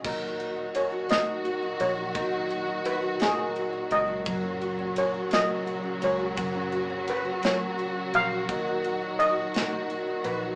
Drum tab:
CC |x-----|------|------|------|
RD |-xxxxx|xxxxxx|xxxxxx|xxxxxx|
SD |---o--|---o--|---o--|---o--|
BD |o-----|o-----|o-----|o-----|

CC |------|
RD |xxxxxx|
SD |---o--|
BD |o-----|